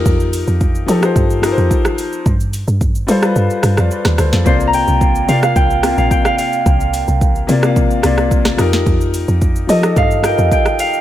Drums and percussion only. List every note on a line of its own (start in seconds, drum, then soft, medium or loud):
0.06 kick loud
0.06 shaker medium
0.20 shaker medium
0.33 open hi-hat medium
0.33 shaker loud
0.47 shaker medium
0.61 kick medium
0.61 shaker medium
0.75 shaker medium
0.88 open hi-hat medium
0.88 shaker medium
1.03 cross-stick loud
1.03 shaker medium
1.16 kick loud
1.16 shaker medium
1.30 shaker medium
1.43 cross-stick loud
1.43 open hi-hat medium
1.43 shaker medium
1.58 shaker medium
1.71 kick loud
1.71 shaker medium
1.85 cross-stick loud
1.85 shaker medium
1.98 open hi-hat medium
1.98 shaker medium
2.13 shaker soft
2.26 kick loud
2.26 shaker medium
2.40 shaker medium
2.53 open hi-hat medium
2.53 shaker loud
2.68 shaker medium
2.81 kick medium
2.81 shaker medium
2.95 shaker medium
3.08 open hi-hat medium
3.08 shaker medium
3.23 cross-stick loud
3.23 shaker medium
3.36 shaker medium
3.50 shaker medium
3.63 cross-stick loud
3.63 open hi-hat medium
3.63 shaker medium
3.77 cross-stick loud
3.77 shaker medium
3.91 shaker medium
4.05 cross-stick loud
4.05 snare medium
4.05 shaker medium
4.18 cross-stick loud
4.18 open hi-hat medium
4.18 shaker medium
4.33 snare medium
4.33 shaker medium
4.46 kick loud
4.46 shaker medium
4.60 shaker medium
4.73 open hi-hat medium
4.73 shaker loud
4.88 shaker medium
5.01 kick medium
5.01 shaker medium
5.15 shaker medium
5.29 open hi-hat medium
5.29 shaker medium
5.43 cross-stick loud
5.43 shaker medium
5.56 kick loud
5.56 shaker medium
5.70 shaker medium
5.83 cross-stick loud
5.83 open hi-hat medium
5.83 shaker medium
5.98 shaker medium
6.11 kick medium
6.11 shaker medium
6.25 cross-stick loud
6.25 shaker medium
6.38 open hi-hat medium
6.38 shaker medium
6.53 shaker medium
6.66 kick loud
6.66 shaker medium
6.80 shaker medium
6.94 open hi-hat medium
6.94 shaker loud
7.08 shaker medium
7.21 kick medium
7.21 shaker medium
7.36 shaker medium
7.49 open hi-hat medium
7.49 shaker medium
7.63 cross-stick loud
7.63 shaker medium
7.76 kick loud
7.76 shaker medium
7.91 shaker medium
8.03 cross-stick loud
8.03 open hi-hat medium
8.03 shaker medium
8.18 cross-stick loud
8.18 shaker medium
8.31 kick medium
8.31 shaker medium
8.45 cross-stick loud
8.45 snare medium
8.45 shaker medium
8.58 cross-stick loud
8.58 open hi-hat medium
8.58 shaker medium
8.73 snare medium
8.73 shaker medium
8.86 kick loud
8.86 shaker medium
9.01 shaker medium
9.14 open hi-hat medium
9.14 shaker loud
9.28 shaker medium
9.41 kick loud
9.41 shaker medium
9.56 shaker medium
9.69 open hi-hat medium
9.69 shaker medium
9.83 cross-stick loud
9.83 shaker medium
9.96 kick loud
9.96 shaker medium
10.11 shaker medium
10.24 cross-stick loud
10.24 open hi-hat medium
10.24 shaker medium
10.38 shaker medium
10.51 kick medium
10.51 shaker medium
10.66 cross-stick loud
10.66 shaker medium
10.79 open hi-hat medium
10.79 shaker medium
10.93 shaker medium